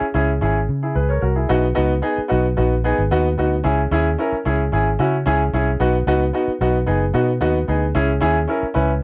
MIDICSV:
0, 0, Header, 1, 4, 480
1, 0, Start_track
1, 0, Tempo, 537634
1, 1342, Time_signature, 4, 2, 24, 8
1, 8063, End_track
2, 0, Start_track
2, 0, Title_t, "Upright piano"
2, 0, Program_c, 0, 0
2, 125, Note_on_c, 0, 61, 86
2, 129, Note_on_c, 0, 64, 72
2, 135, Note_on_c, 0, 68, 90
2, 267, Note_off_c, 0, 61, 0
2, 269, Note_off_c, 0, 64, 0
2, 272, Note_off_c, 0, 68, 0
2, 368, Note_on_c, 0, 61, 73
2, 374, Note_on_c, 0, 64, 64
2, 377, Note_on_c, 0, 68, 84
2, 508, Note_off_c, 0, 61, 0
2, 512, Note_off_c, 0, 64, 0
2, 513, Note_off_c, 0, 68, 0
2, 739, Note_on_c, 0, 68, 54
2, 743, Note_on_c, 0, 64, 50
2, 846, Note_off_c, 0, 68, 0
2, 851, Note_on_c, 0, 71, 60
2, 856, Note_off_c, 0, 64, 0
2, 859, Note_on_c, 0, 68, 52
2, 970, Note_off_c, 0, 71, 0
2, 972, Note_on_c, 0, 73, 61
2, 974, Note_off_c, 0, 68, 0
2, 975, Note_on_c, 0, 70, 48
2, 1070, Note_off_c, 0, 70, 0
2, 1083, Note_on_c, 0, 70, 60
2, 1090, Note_off_c, 0, 73, 0
2, 1092, Note_on_c, 0, 66, 50
2, 1206, Note_off_c, 0, 70, 0
2, 1211, Note_off_c, 0, 66, 0
2, 1212, Note_on_c, 0, 68, 53
2, 1216, Note_on_c, 0, 64, 50
2, 1330, Note_on_c, 0, 59, 90
2, 1331, Note_on_c, 0, 63, 90
2, 1339, Note_on_c, 0, 66, 105
2, 1444, Note_off_c, 0, 68, 0
2, 1447, Note_off_c, 0, 64, 0
2, 1469, Note_off_c, 0, 59, 0
2, 1470, Note_off_c, 0, 63, 0
2, 1474, Note_off_c, 0, 66, 0
2, 1561, Note_on_c, 0, 59, 100
2, 1563, Note_on_c, 0, 63, 90
2, 1568, Note_on_c, 0, 66, 99
2, 1705, Note_off_c, 0, 59, 0
2, 1706, Note_off_c, 0, 63, 0
2, 1709, Note_off_c, 0, 66, 0
2, 1802, Note_on_c, 0, 59, 74
2, 1806, Note_on_c, 0, 63, 75
2, 1810, Note_on_c, 0, 68, 91
2, 1945, Note_off_c, 0, 59, 0
2, 1947, Note_off_c, 0, 63, 0
2, 1950, Note_off_c, 0, 68, 0
2, 2037, Note_on_c, 0, 59, 83
2, 2044, Note_on_c, 0, 63, 73
2, 2049, Note_on_c, 0, 66, 87
2, 2183, Note_off_c, 0, 59, 0
2, 2187, Note_off_c, 0, 63, 0
2, 2189, Note_off_c, 0, 66, 0
2, 2292, Note_on_c, 0, 59, 75
2, 2294, Note_on_c, 0, 63, 70
2, 2299, Note_on_c, 0, 66, 80
2, 2430, Note_off_c, 0, 59, 0
2, 2431, Note_off_c, 0, 63, 0
2, 2434, Note_off_c, 0, 66, 0
2, 2537, Note_on_c, 0, 59, 82
2, 2543, Note_on_c, 0, 63, 69
2, 2546, Note_on_c, 0, 68, 85
2, 2673, Note_off_c, 0, 59, 0
2, 2676, Note_off_c, 0, 63, 0
2, 2677, Note_off_c, 0, 68, 0
2, 2777, Note_on_c, 0, 59, 100
2, 2782, Note_on_c, 0, 63, 81
2, 2787, Note_on_c, 0, 66, 101
2, 2913, Note_off_c, 0, 59, 0
2, 2915, Note_off_c, 0, 63, 0
2, 2918, Note_off_c, 0, 66, 0
2, 3014, Note_on_c, 0, 59, 72
2, 3023, Note_on_c, 0, 63, 77
2, 3025, Note_on_c, 0, 66, 84
2, 3151, Note_off_c, 0, 59, 0
2, 3156, Note_off_c, 0, 63, 0
2, 3157, Note_off_c, 0, 66, 0
2, 3247, Note_on_c, 0, 61, 90
2, 3251, Note_on_c, 0, 64, 84
2, 3253, Note_on_c, 0, 68, 91
2, 3387, Note_off_c, 0, 61, 0
2, 3390, Note_off_c, 0, 64, 0
2, 3390, Note_off_c, 0, 68, 0
2, 3495, Note_on_c, 0, 61, 90
2, 3500, Note_on_c, 0, 64, 94
2, 3505, Note_on_c, 0, 68, 105
2, 3631, Note_off_c, 0, 61, 0
2, 3634, Note_off_c, 0, 64, 0
2, 3636, Note_off_c, 0, 68, 0
2, 3736, Note_on_c, 0, 61, 74
2, 3741, Note_on_c, 0, 64, 72
2, 3747, Note_on_c, 0, 70, 84
2, 3872, Note_off_c, 0, 61, 0
2, 3874, Note_off_c, 0, 64, 0
2, 3877, Note_off_c, 0, 70, 0
2, 3976, Note_on_c, 0, 61, 80
2, 3980, Note_on_c, 0, 64, 68
2, 3984, Note_on_c, 0, 68, 93
2, 4112, Note_off_c, 0, 61, 0
2, 4114, Note_off_c, 0, 64, 0
2, 4116, Note_off_c, 0, 68, 0
2, 4215, Note_on_c, 0, 61, 69
2, 4221, Note_on_c, 0, 64, 65
2, 4226, Note_on_c, 0, 68, 84
2, 4351, Note_off_c, 0, 61, 0
2, 4354, Note_off_c, 0, 64, 0
2, 4356, Note_off_c, 0, 68, 0
2, 4455, Note_on_c, 0, 61, 83
2, 4460, Note_on_c, 0, 64, 75
2, 4463, Note_on_c, 0, 66, 82
2, 4591, Note_off_c, 0, 61, 0
2, 4594, Note_off_c, 0, 64, 0
2, 4595, Note_off_c, 0, 66, 0
2, 4693, Note_on_c, 0, 61, 93
2, 4701, Note_on_c, 0, 64, 85
2, 4702, Note_on_c, 0, 68, 105
2, 4830, Note_off_c, 0, 61, 0
2, 4834, Note_off_c, 0, 64, 0
2, 4835, Note_off_c, 0, 68, 0
2, 4942, Note_on_c, 0, 61, 83
2, 4946, Note_on_c, 0, 64, 71
2, 4949, Note_on_c, 0, 68, 90
2, 5074, Note_off_c, 0, 61, 0
2, 5076, Note_off_c, 0, 64, 0
2, 5078, Note_off_c, 0, 68, 0
2, 5176, Note_on_c, 0, 59, 92
2, 5179, Note_on_c, 0, 63, 78
2, 5187, Note_on_c, 0, 66, 103
2, 5311, Note_off_c, 0, 59, 0
2, 5313, Note_off_c, 0, 63, 0
2, 5317, Note_off_c, 0, 66, 0
2, 5420, Note_on_c, 0, 59, 102
2, 5428, Note_on_c, 0, 63, 93
2, 5429, Note_on_c, 0, 66, 109
2, 5553, Note_off_c, 0, 59, 0
2, 5557, Note_off_c, 0, 63, 0
2, 5558, Note_off_c, 0, 66, 0
2, 5654, Note_on_c, 0, 59, 76
2, 5663, Note_on_c, 0, 63, 73
2, 5665, Note_on_c, 0, 66, 85
2, 5790, Note_off_c, 0, 59, 0
2, 5794, Note_off_c, 0, 63, 0
2, 5795, Note_off_c, 0, 66, 0
2, 5900, Note_on_c, 0, 59, 86
2, 5902, Note_on_c, 0, 63, 72
2, 5905, Note_on_c, 0, 66, 91
2, 6033, Note_off_c, 0, 59, 0
2, 6034, Note_off_c, 0, 63, 0
2, 6036, Note_off_c, 0, 66, 0
2, 6128, Note_on_c, 0, 59, 78
2, 6132, Note_on_c, 0, 63, 67
2, 6136, Note_on_c, 0, 68, 82
2, 6267, Note_off_c, 0, 59, 0
2, 6269, Note_off_c, 0, 63, 0
2, 6271, Note_off_c, 0, 68, 0
2, 6370, Note_on_c, 0, 59, 79
2, 6374, Note_on_c, 0, 63, 77
2, 6379, Note_on_c, 0, 66, 89
2, 6508, Note_off_c, 0, 59, 0
2, 6510, Note_off_c, 0, 63, 0
2, 6512, Note_off_c, 0, 66, 0
2, 6612, Note_on_c, 0, 59, 99
2, 6616, Note_on_c, 0, 63, 90
2, 6623, Note_on_c, 0, 66, 103
2, 6749, Note_off_c, 0, 59, 0
2, 6751, Note_off_c, 0, 63, 0
2, 6754, Note_off_c, 0, 66, 0
2, 6854, Note_on_c, 0, 59, 77
2, 6860, Note_on_c, 0, 63, 73
2, 6867, Note_on_c, 0, 68, 78
2, 6990, Note_off_c, 0, 59, 0
2, 6993, Note_off_c, 0, 63, 0
2, 6996, Note_off_c, 0, 68, 0
2, 7095, Note_on_c, 0, 61, 98
2, 7097, Note_on_c, 0, 64, 82
2, 7104, Note_on_c, 0, 68, 104
2, 7230, Note_off_c, 0, 61, 0
2, 7231, Note_off_c, 0, 64, 0
2, 7235, Note_off_c, 0, 68, 0
2, 7326, Note_on_c, 0, 61, 95
2, 7333, Note_on_c, 0, 64, 93
2, 7336, Note_on_c, 0, 68, 117
2, 7466, Note_off_c, 0, 61, 0
2, 7469, Note_off_c, 0, 64, 0
2, 7471, Note_off_c, 0, 68, 0
2, 7567, Note_on_c, 0, 61, 80
2, 7576, Note_on_c, 0, 64, 74
2, 7579, Note_on_c, 0, 70, 83
2, 7706, Note_off_c, 0, 61, 0
2, 7711, Note_off_c, 0, 64, 0
2, 7712, Note_off_c, 0, 70, 0
2, 7804, Note_on_c, 0, 61, 88
2, 7809, Note_on_c, 0, 64, 75
2, 7809, Note_on_c, 0, 71, 81
2, 7945, Note_off_c, 0, 61, 0
2, 7947, Note_off_c, 0, 64, 0
2, 7947, Note_off_c, 0, 71, 0
2, 8063, End_track
3, 0, Start_track
3, 0, Title_t, "Fingered electric bass"
3, 0, Program_c, 1, 33
3, 130, Note_on_c, 1, 37, 74
3, 346, Note_off_c, 1, 37, 0
3, 372, Note_on_c, 1, 32, 86
3, 587, Note_off_c, 1, 32, 0
3, 615, Note_on_c, 1, 49, 89
3, 829, Note_off_c, 1, 49, 0
3, 854, Note_on_c, 1, 37, 82
3, 1068, Note_off_c, 1, 37, 0
3, 1093, Note_on_c, 1, 36, 81
3, 1308, Note_off_c, 1, 36, 0
3, 1339, Note_on_c, 1, 35, 94
3, 1551, Note_off_c, 1, 35, 0
3, 1584, Note_on_c, 1, 37, 88
3, 1794, Note_off_c, 1, 37, 0
3, 2067, Note_on_c, 1, 35, 83
3, 2275, Note_off_c, 1, 35, 0
3, 2302, Note_on_c, 1, 34, 93
3, 2618, Note_off_c, 1, 34, 0
3, 2665, Note_on_c, 1, 32, 80
3, 2769, Note_off_c, 1, 32, 0
3, 2782, Note_on_c, 1, 39, 90
3, 2992, Note_off_c, 1, 39, 0
3, 3020, Note_on_c, 1, 38, 73
3, 3231, Note_off_c, 1, 38, 0
3, 3257, Note_on_c, 1, 37, 100
3, 3469, Note_off_c, 1, 37, 0
3, 3492, Note_on_c, 1, 39, 90
3, 3707, Note_off_c, 1, 39, 0
3, 3981, Note_on_c, 1, 37, 72
3, 4191, Note_off_c, 1, 37, 0
3, 4218, Note_on_c, 1, 32, 88
3, 4430, Note_off_c, 1, 32, 0
3, 4461, Note_on_c, 1, 49, 92
3, 4671, Note_off_c, 1, 49, 0
3, 4700, Note_on_c, 1, 37, 98
3, 4910, Note_off_c, 1, 37, 0
3, 4940, Note_on_c, 1, 36, 89
3, 5151, Note_off_c, 1, 36, 0
3, 5180, Note_on_c, 1, 35, 97
3, 5390, Note_off_c, 1, 35, 0
3, 5417, Note_on_c, 1, 37, 97
3, 5628, Note_off_c, 1, 37, 0
3, 5899, Note_on_c, 1, 35, 76
3, 6110, Note_off_c, 1, 35, 0
3, 6138, Note_on_c, 1, 30, 94
3, 6349, Note_off_c, 1, 30, 0
3, 6375, Note_on_c, 1, 47, 92
3, 6619, Note_on_c, 1, 39, 88
3, 6632, Note_off_c, 1, 47, 0
3, 6829, Note_off_c, 1, 39, 0
3, 6860, Note_on_c, 1, 38, 85
3, 7070, Note_off_c, 1, 38, 0
3, 7099, Note_on_c, 1, 37, 102
3, 7310, Note_off_c, 1, 37, 0
3, 7339, Note_on_c, 1, 39, 98
3, 7550, Note_off_c, 1, 39, 0
3, 7819, Note_on_c, 1, 37, 80
3, 8030, Note_off_c, 1, 37, 0
3, 8063, End_track
4, 0, Start_track
4, 0, Title_t, "Muted fingered electric bass strokes"
4, 9, Note_on_c, 9, 29, 45
4, 99, Note_off_c, 9, 29, 0
4, 1948, Note_on_c, 9, 29, 44
4, 2037, Note_off_c, 9, 29, 0
4, 3860, Note_on_c, 9, 29, 44
4, 3950, Note_off_c, 9, 29, 0
4, 5783, Note_on_c, 9, 29, 47
4, 5872, Note_off_c, 9, 29, 0
4, 7703, Note_on_c, 9, 29, 45
4, 7793, Note_off_c, 9, 29, 0
4, 8063, End_track
0, 0, End_of_file